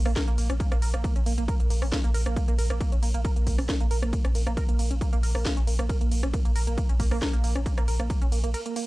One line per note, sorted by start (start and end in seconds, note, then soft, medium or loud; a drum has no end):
0.05 0.16 A#1 medium
0.05 0.11 A#3 loud
0.05 cross-stick medium
0.05 open hi-hat medium
0.05 ride medium
0.16 0.23 A#4 loud
0.16 kick loud
0.16 snare loud
0.16 closed hi-hat medium
0.16 ride medium
0.28 0.37 A#1 medium
0.28 0.36 A#3 medium
0.28 closed hi-hat medium
0.28 ride medium
0.38 0.49 A#1 loud
0.38 0.48 A#3 medium
0.38 open hi-hat loud
0.38 ride medium
0.50 0.60 A#1 medium
0.50 0.53 C#4 medium
0.50 cross-stick medium
0.50 closed hi-hat medium
0.50 ride medium
0.60 0.67 A#3 medium
0.60 kick loud
0.60 closed hi-hat medium
0.60 ride medium
0.72 0.82 A#1 medium
0.72 0.78 A#3 loud
0.72 cross-stick medium
0.72 closed hi-hat medium
0.72 ride medium
0.82 0.93 A#1 loud
0.82 0.89 A#4 loud
0.82 open hi-hat loud
0.82 ride medium
0.94 1.04 A#1 medium
0.94 1.03 A#3 medium
0.94 cross-stick medium
0.94 closed hi-hat medium
0.94 ride medium
1.04 1.14 A#3 medium
1.04 kick loud
1.04 closed hi-hat medium
1.04 ride medium
1.16 1.26 A#1 medium
1.16 1.19 C#4 medium
1.16 closed hi-hat medium
1.16 ride medium
1.26 1.37 A#1 loud
1.26 1.33 A#3 medium
1.26 open hi-hat loud
1.26 ride medium
1.38 1.48 A#1 medium
1.38 1.44 A#3 loud
1.38 closed hi-hat medium
1.38 ride medium
1.48 1.55 A#4 loud
1.48 kick loud
1.48 closed hi-hat medium
1.48 ride medium
1.60 1.70 A#1 medium
1.60 1.69 A#3 medium
1.60 closed hi-hat medium
1.60 ride medium
1.70 1.81 A#1 loud
1.70 1.80 A#3 medium
1.70 open hi-hat loud
1.70 ride medium
1.82 1.92 A#1 medium
1.82 1.86 C#4 medium
1.82 cross-stick medium
1.82 open hi-hat medium
1.82 ride medium
1.92 1.99 A#3 medium
1.92 kick loud
1.92 snare loud
1.92 closed hi-hat medium
1.92 ride medium
2.04 2.14 A#1 medium
2.04 2.10 A#3 loud
2.04 closed hi-hat medium
2.04 ride medium
2.14 2.25 A#1 loud
2.14 2.21 A#4 loud
2.14 open hi-hat loud
2.14 ride medium
2.26 2.36 A#1 medium
2.26 2.35 A#3 medium
2.26 cross-stick medium
2.26 closed hi-hat medium
2.26 ride medium
2.36 2.43 A#3 medium
2.36 kick loud
2.36 closed hi-hat medium
2.36 ride medium
2.48 2.58 A#1 medium
2.48 2.54 A#3 loud
2.48 closed hi-hat medium
2.48 ride medium
2.59 2.70 A#1 loud
2.59 2.65 A#4 loud
2.59 open hi-hat loud
2.59 ride medium
2.70 2.80 A#1 medium
2.70 2.79 A#3 medium
2.70 cross-stick medium
2.70 ride medium
2.81 2.91 A#3 medium
2.81 kick loud
2.81 closed hi-hat medium
2.81 ride medium
2.92 3.02 A#1 medium
2.92 2.96 C#4 medium
2.92 closed hi-hat medium
2.92 ride medium
3.03 3.14 A#1 loud
3.03 3.09 A#3 medium
3.03 open hi-hat loud
3.03 ride medium
3.14 3.25 A#1 medium
3.14 3.20 A#3 medium
3.14 closed hi-hat soft
3.14 ride medium
3.25 3.31 A#4 loud
3.25 kick loud
3.25 closed hi-hat medium
3.25 ride medium
3.36 3.46 A#1 medium
3.36 3.45 A#3 medium
3.36 closed hi-hat soft
3.36 ride medium
3.47 3.58 A#1 loud
3.47 3.57 A#3 medium
3.47 kick medium
3.47 open hi-hat loud
3.47 ride medium
3.58 3.69 A#1 medium
3.58 3.62 C#4 medium
3.58 cross-stick medium
3.58 open hi-hat medium
3.58 ride medium
3.69 3.75 A#3 medium
3.69 kick loud
3.69 snare loud
3.69 closed hi-hat medium
3.69 ride medium
3.81 3.90 A#1 medium
3.81 3.86 A#3 loud
3.81 closed hi-hat medium
3.81 ride medium
3.91 4.02 A#1 loud
3.91 3.98 A#4 loud
3.91 open hi-hat loud
3.91 ride medium
4.02 4.13 A#1 medium
4.02 4.11 A#3 medium
4.02 cross-stick medium
4.02 closed hi-hat medium
4.02 ride medium
4.13 4.23 A#3 medium
4.13 kick loud
4.13 closed hi-hat medium
4.13 ride medium
4.25 4.34 A#1 medium
4.25 4.28 C#4 medium
4.25 cross-stick medium
4.25 closed hi-hat medium
4.25 ride medium
4.35 4.46 A#1 loud
4.35 4.42 A#3 medium
4.35 open hi-hat loud
4.35 ride medium
4.47 4.57 A#1 medium
4.47 4.53 A#3 loud
4.47 cross-stick medium
4.47 closed hi-hat medium
4.47 ride medium
4.57 4.64 A#4 loud
4.57 kick loud
4.57 closed hi-hat medium
4.57 ride medium
4.69 4.79 A#1 medium
4.69 4.78 A#3 medium
4.69 closed hi-hat medium
4.69 ride medium
4.79 4.90 A#1 loud
4.79 4.89 A#3 medium
4.79 open hi-hat loud
4.79 ride medium
4.91 5.01 A#1 medium
4.91 4.94 C#4 medium
4.91 closed hi-hat soft
4.91 ride medium
5.01 5.08 A#3 medium
5.01 kick loud
5.01 closed hi-hat medium
5.01 ride medium
5.13 5.23 A#1 medium
5.13 5.19 A#3 loud
5.13 closed hi-hat soft
5.13 ride medium
5.23 5.34 A#1 loud
5.23 5.30 A#4 loud
5.23 open hi-hat loud
5.23 ride medium
5.35 5.45 A#1 medium
5.35 5.44 A#3 medium
5.35 cross-stick medium
5.35 open hi-hat medium
5.35 ride medium
5.45 5.55 A#3 medium
5.45 kick loud
5.45 snare loud
5.45 closed hi-hat medium
5.45 ride medium
5.57 5.67 A#1 medium
5.57 5.60 C#4 medium
5.57 closed hi-hat medium
5.57 ride medium
5.67 5.78 A#1 loud
5.67 5.74 A#3 medium
5.67 open hi-hat loud
5.67 ride medium
5.79 5.89 A#1 medium
5.79 5.85 A#3 loud
5.79 cross-stick medium
5.79 closed hi-hat medium
5.79 ride medium
5.89 5.96 A#4 loud
5.89 kick loud
5.89 closed hi-hat medium
5.89 ride medium
6.01 6.11 A#1 medium
6.01 6.10 A#3 medium
6.01 closed hi-hat soft
6.01 ride medium
6.11 6.23 A#1 loud
6.11 6.21 A#3 medium
6.11 open hi-hat loud
6.11 ride medium
6.23 6.33 A#1 medium
6.23 6.27 C#4 medium
6.23 cross-stick medium
6.23 closed hi-hat soft
6.23 ride medium
6.33 6.40 A#3 medium
6.33 kick loud
6.33 closed hi-hat medium
6.33 ride medium
6.45 6.55 A#1 medium
6.45 6.51 A#3 loud
6.45 closed hi-hat medium
6.45 ride medium
6.56 6.67 A#1 loud
6.56 6.62 A#4 loud
6.56 open hi-hat loud
6.56 ride medium
6.67 6.77 A#1 medium
6.67 6.76 A#3 medium
6.67 closed hi-hat medium
6.67 ride medium
6.78 6.88 A#3 medium
6.78 kick loud
6.78 closed hi-hat medium
6.78 ride medium
6.89 6.99 A#1 medium
6.89 6.93 C#4 medium
6.89 closed hi-hat soft
6.89 ride medium
7.00 7.11 A#1 loud
7.00 7.06 A#3 medium
7.00 kick medium
7.00 open hi-hat loud
7.00 ride medium
7.11 7.22 A#1 medium
7.11 7.17 A#3 loud
7.11 cross-stick medium
7.11 open hi-hat medium
7.11 ride medium
7.22 7.28 A#4 loud
7.22 kick loud
7.22 snare loud
7.22 closed hi-hat medium
7.22 ride medium
7.33 7.43 A#1 medium
7.33 7.42 A#3 medium
7.33 closed hi-hat medium
7.33 ride medium
7.44 7.55 A#1 loud
7.44 7.54 A#3 medium
7.44 open hi-hat loud
7.44 ride medium
7.55 7.66 A#1 medium
7.55 7.59 C#4 medium
7.55 cross-stick medium
7.55 closed hi-hat medium
7.55 ride medium
7.66 7.73 A#3 medium
7.66 kick loud
7.66 closed hi-hat medium
7.66 ride medium
7.78 7.87 A#1 medium
7.78 7.83 A#3 loud
7.78 cross-stick medium
7.78 closed hi-hat medium
7.78 ride medium
7.88 7.99 A#1 loud
7.88 7.95 A#4 loud
7.88 open hi-hat loud
7.88 ride medium
8.00 8.10 A#1 medium
8.00 8.08 A#3 medium
8.00 cross-stick medium
8.00 closed hi-hat medium
8.00 ride medium
8.10 8.20 A#3 medium
8.10 kick loud
8.10 closed hi-hat medium
8.10 ride medium
8.22 8.31 A#1 medium
8.22 8.25 C#4 medium
8.22 closed hi-hat medium
8.22 ride medium
8.32 8.43 A#1 loud
8.32 8.39 A#3 medium
8.32 open hi-hat loud
8.32 ride medium
8.44 8.54 A#1 medium
8.44 8.50 A#3 medium
8.44 closed hi-hat medium
8.44 ride medium
8.54 8.61 A#4 loud
8.54 closed hi-hat medium
8.54 ride medium
8.66 8.75 A#3 medium
8.66 closed hi-hat medium
8.66 ride medium
8.76 8.86 A#3 medium
8.76 open hi-hat loud
8.76 ride medium